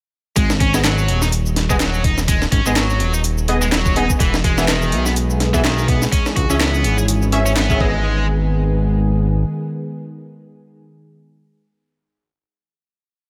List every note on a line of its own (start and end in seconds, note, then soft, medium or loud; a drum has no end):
0.36 1.10 G#1 loud
0.36 0.49 G#3 medium
0.36 kick loud
0.36 closed hi-hat medium
0.36 shaker medium
0.50 snare medium
0.50 shaker soft
0.60 0.72 C#4 medium
0.60 kick loud
0.60 closed hi-hat medium
0.74 0.79 G#3 loud
0.74 0.81 B3 medium
0.74 0.82 G#4 medium
0.74 0.82 D#5 medium
0.74 snare medium
0.74 shaker medium
0.84 1.21 F#3 medium
0.84 snare loud
0.84 clap loud
0.84 closed hi-hat medium
0.84 shaker medium
0.98 shaker soft
1.08 2.47 D#1 medium
1.08 closed hi-hat medium
1.22 1.27 D#4 loud
1.22 snare soft
1.22 shaker medium
1.32 closed hi-hat medium
1.32 shaker medium
1.46 shaker soft
1.56 snare soft
1.56 closed hi-hat medium
1.70 1.75 G#3 loud
1.70 1.77 B3 medium
1.70 1.77 G#4 medium
1.70 1.77 D#5 loud
1.70 kick loud
1.70 shaker medium
1.80 2.03 F#3 medium
1.80 snare loud
1.80 clap loud
1.80 closed hi-hat medium
1.80 shaker medium
1.94 shaker soft
2.04 2.17 D#4 medium
2.04 kick loud
2.04 closed hi-hat medium
2.18 snare soft
2.18 shaker medium
2.28 2.41 G#3 medium
2.28 kick loud
2.28 closed hi-hat medium
2.28 shaker medium
2.42 snare soft
2.42 shaker soft
2.52 2.61 G#1 loud
2.52 2.64 C#4 medium
2.52 kick loud
2.52 closed hi-hat medium
2.66 3.02 G#1 medium
2.66 2.71 G#3 loud
2.66 2.73 B3 medium
2.66 2.73 G#4 medium
2.66 2.73 D#5 medium
2.66 shaker medium
2.76 3.13 F#3 medium
2.76 snare loud
2.76 clap loud
2.76 closed hi-hat medium
2.76 shaker medium
2.90 shaker soft
3.00 4.15 D#1 loud
3.00 closed hi-hat medium
3.14 3.19 D#4 loud
3.14 shaker medium
3.24 closed hi-hat medium
3.24 shaker medium
3.38 shaker soft
3.48 3.58 B3 medium
3.48 3.58 G#4 medium
3.48 3.58 D#5 medium
3.48 closed hi-hat medium
3.62 3.67 G#3 loud
3.62 shaker medium
3.72 3.95 F#3 medium
3.72 snare loud
3.72 clap loud
3.72 closed hi-hat medium
3.72 shaker medium
3.86 kick loud
3.86 shaker soft
3.96 4.06 B3 medium
3.96 4.09 D#4 medium
3.96 4.06 G#4 medium
3.96 4.06 D#5 medium
3.96 closed hi-hat medium
4.10 kick loud
4.10 shaker medium
4.20 4.94 E1 loud
4.20 4.33 E3 medium
4.20 7.77 G#3 medium
4.20 6.11 B3 medium
4.20 7.77 G#4 medium
4.20 kick loud
4.20 closed hi-hat medium
4.20 shaker soft
4.34 snare medium
4.34 shaker soft
4.44 4.56 G#3 medium
4.44 kick loud
4.44 closed hi-hat medium
4.58 4.63 E3 loud
4.58 4.65 B3 medium
4.58 4.65 G#4 medium
4.58 4.65 E5 medium
4.58 snare medium
4.58 shaker medium
4.68 5.05 D#3 medium
4.68 snare loud
4.68 clap loud
4.68 closed hi-hat medium
4.68 shaker medium
4.82 shaker soft
4.92 6.07 B1 medium
4.92 closed hi-hat medium
5.06 5.11 B3 loud
5.06 snare soft
5.06 shaker medium
5.16 closed hi-hat medium
5.16 shaker medium
5.30 shaker soft
5.40 snare soft
5.40 closed hi-hat medium
5.54 5.59 E3 loud
5.54 5.61 B3 medium
5.54 5.61 G#4 medium
5.54 5.61 E5 loud
5.54 kick loud
5.54 shaker medium
5.64 5.87 D#3 medium
5.64 snare loud
5.64 clap loud
5.64 closed hi-hat medium
5.64 shaker medium
5.78 shaker soft
5.88 6.01 B3 medium
5.88 kick loud
5.88 closed hi-hat medium
6.02 snare soft
6.02 shaker medium
6.12 7.79 E3 medium
6.12 6.25 C#4 medium
6.12 7.79 C#4 medium
6.12 kick loud
6.12 closed hi-hat medium
6.12 shaker medium
6.26 snare soft
6.26 shaker soft
6.36 6.45 C#2 loud
6.36 6.48 F#4 medium
6.36 kick loud
6.36 closed hi-hat medium
6.50 6.86 C#2 medium
6.50 6.55 C#4 loud
6.50 6.57 C#4 medium
6.50 6.57 G#4 medium
6.50 6.57 E5 medium
6.50 shaker medium
6.60 6.97 B3 medium
6.60 snare loud
6.60 clap loud
6.60 closed hi-hat medium
6.60 shaker medium
6.74 shaker soft
6.84 7.56 G#1 medium
6.84 closed hi-hat medium
6.98 7.03 G#4 loud
6.98 shaker medium
7.08 closed hi-hat medium
7.08 shaker medium
7.22 shaker soft
7.32 7.42 C#4 medium
7.32 7.42 G#4 medium
7.32 7.42 E5 loud
7.32 closed hi-hat medium
7.46 7.51 C#4 loud
7.46 shaker medium
7.56 7.80 G#1 loud
7.56 7.79 B3 medium
7.56 snare loud
7.56 clap loud
7.56 closed hi-hat medium
7.56 shaker medium
7.70 7.77 C#4 medium
7.70 7.77 G#4 medium
7.70 7.77 E5 medium
7.70 kick loud
7.70 shaker soft
7.80 9.44 G#1 medium
7.80 10.83 D#3 medium
7.80 10.83 G#3 medium
7.80 8.25 G#3 loud
7.80 10.83 B3 medium
7.80 10.83 G#4 medium
7.80 10.83 D#5 loud
7.80 kick loud